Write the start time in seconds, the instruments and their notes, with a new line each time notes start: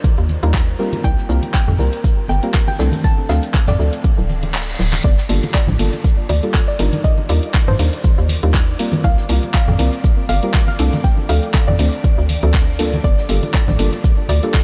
0.04 kick, closed hi-hat, muted conga
0.17 fm bass D#2, closed hi-hat
0.28 closed hi-hat, high conga
0.43 fm bass D#2, synth stab G3 D4 D#4 F4 A#4, closed hi-hat
0.54 kick, snare, clap, closed hi-hat, muted conga
0.68 closed hi-hat
0.79 synth stab G3 A#3 C4 F4 A#4, closed hi-hat
0.93 closed hi-hat, muted conga, high conga
1.04 fm bass C2, synth pluck G5, kick, closed hi-hat
1.18 snare
1.29 fm bass C2, synth stab G3 A#3 C4 F4 A#4, closed hi-hat
1.43 closed hi-hat, muted conga
1.54 synth pluck G5, kick, snare, clap, closed hi-hat
1.68 fm bass F2, snare, high conga, low conga
1.78 fm bass C2, synth stab G3 A#3 C4 F4 A#4, closed hi-hat, muted conga
1.93 closed hi-hat
2.04 kick, closed hi-hat
2.28 fm bass G1, synth pluck G5, closed hi-hat, muted conga, high conga
2.43 synth stab G3 A#3 C4 F4 A#4, closed hi-hat
2.53 kick, snare, clap, closed hi-hat
2.67 synth pluck G5, snare, muted conga
2.79 fm bass C2, synth stab F3 A3 C4 D4 A4, snare, closed hi-hat
2.92 closed hi-hat, high conga
3.04 synth pluck A5, kick, closed hi-hat
3.18 muted conga
3.29 fm bass D2, synth stab F3 A3 C4 D4 A4, synth pluck F5, snare, closed hi-hat
3.43 snare, closed hi-hat
3.54 kick, clap, closed hi-hat, muted conga
3.67 fm bass F2, synth pluck D5, snare, closed hi-hat, high conga, low conga
3.79 fm bass D2, synth stab F3 A3 C4 D4 A4, snare
3.93 closed hi-hat
4.04 kick, closed hi-hat, reverse cymbal, muted conga
4.18 fm bass D1, closed hi-hat
4.29 closed hi-hat, high conga
4.43 closed hi-hat, muted conga
4.54 snare, clap, closed hi-hat
4.61 snare, closed hi-hat
4.69 snare, closed hi-hat
4.73 snare, closed hi-hat
4.79 fm bass D1, snare, closed hi-hat
4.93 clap, closed hi-hat, muted conga, high conga
5.04 fm bass G1, string machine D5 D6, synth pluck D5, kick, closed hi-hat, muted conga
5.18 snare
5.29 fm bass G1, synth stab G3 A#3 D4 F4 A4, closed hi-hat, open hi-hat
5.43 closed hi-hat, muted conga
5.54 synth pluck D5, kick, snare, clap, closed hi-hat
5.67 fm bass A#1, snare, high conga, low conga
5.79 fm bass G1, synth stab G3 A#3 D4 F4 A4, closed hi-hat, open hi-hat
5.93 closed hi-hat, muted conga
6.04 kick, closed hi-hat
6.29 fm bass D2, synth pluck D5, closed hi-hat, open hi-hat, muted conga, high conga
6.43 synth stab G3 A#3 D4 F4 A4, closed hi-hat
6.54 kick, snare, clap, closed hi-hat
6.68 synth pluck D5, snare
6.79 fm bass G1, synth stab G3 D4 D#4 F4 A#4, closed hi-hat, open hi-hat, muted conga
6.93 closed hi-hat, high conga
7.04 synth pluck D#5, kick, closed hi-hat
7.18 muted conga
7.29 fm bass D#2, synth stab G3 D4 D#4 F4 A#4, synth pluck D5, closed hi-hat, open hi-hat
7.43 closed hi-hat
7.54 kick, snare, clap, closed hi-hat
7.68 fm bass G2, synth pluck C5, muted conga, high conga, low conga
7.79 fm bass D#2, synth stab G3 D4 D#4 F4 A#4, closed hi-hat, open hi-hat
7.93 closed hi-hat
8.04 kick, closed hi-hat, muted conga
8.18 fm bass D#2, closed hi-hat
8.29 closed hi-hat, open hi-hat, high conga
8.43 fm bass D#2, synth stab G3 D4 D#4 F4 A#4, closed hi-hat
8.54 kick, snare, clap, closed hi-hat, muted conga
8.68 closed hi-hat
8.79 synth stab G3 A#3 C4 F4 A#4, closed hi-hat, open hi-hat
8.92 closed hi-hat, muted conga, high conga
9.04 fm bass C2, synth pluck F5, kick, closed hi-hat
9.18 snare
9.29 fm bass C2, synth stab G3 A#3 C4 F4 A#4, closed hi-hat, open hi-hat
9.43 closed hi-hat, muted conga
9.54 synth pluck F5, kick, snare, clap, closed hi-hat
9.68 fm bass F2, snare, high conga, low conga
9.79 fm bass C2, synth stab G3 A#3 C4 F4 A#4, closed hi-hat, open hi-hat, muted conga
9.93 closed hi-hat
10.04 kick, closed hi-hat
10.29 fm bass G1, synth pluck F5, closed hi-hat, open hi-hat, muted conga, high conga
10.43 synth stab G3 A#3 C4 F4 A#4, closed hi-hat
10.54 kick, snare, clap, closed hi-hat
10.68 synth pluck F5, snare, muted conga
10.79 fm bass C2, synth stab F3 A3 C4 D4 A4, closed hi-hat, open hi-hat
10.93 closed hi-hat, high conga
11.04 synth pluck G5, kick, closed hi-hat
11.18 muted conga
11.29 fm bass D2, synth stab F3 A3 C4 D4 A4, synth pluck F5, closed hi-hat, open hi-hat
11.43 closed hi-hat
11.54 kick, snare, clap, closed hi-hat, muted conga
11.68 fm bass F2, synth pluck D5, high conga, low conga
11.79 fm bass D2, synth stab F3 A3 C4 D4 A4, closed hi-hat, open hi-hat
11.93 closed hi-hat
12.04 kick, closed hi-hat, muted conga
12.18 fm bass D2, closed hi-hat
12.29 closed hi-hat, open hi-hat, high conga
12.43 fm bass D2, synth stab F3 A3 C4 D4 A4, closed hi-hat, muted conga
12.54 kick, snare, clap, closed hi-hat
12.68 closed hi-hat
12.79 synth stab G3 A#3 D4 F4 A4, closed hi-hat, open hi-hat
12.93 closed hi-hat, muted conga, high conga
13.04 fm bass G1, synth pluck D5, kick, closed hi-hat, muted conga, shaker
13.18 snare
13.29 fm bass G1, synth stab G3 A#3 D4 F4 A4, closed hi-hat, open hi-hat, shaker
13.43 closed hi-hat, muted conga, shaker
13.54 synth pluck D5, kick, snare, clap, closed hi-hat, shaker
13.68 fm bass A#1, snare, high conga, low conga, shaker
13.79 fm bass G1, synth stab G3 A#3 D4 F4 A4, closed hi-hat, open hi-hat, shaker
13.93 closed hi-hat, muted conga, shaker
14.04 kick, closed hi-hat, shaker
14.29 fm bass D2, synth pluck D5, closed hi-hat, open hi-hat, muted conga, high conga, shaker
14.43 synth stab G3 A#3 D4 F4 A4, closed hi-hat, shaker
14.54 kick, snare, clap, closed hi-hat, shaker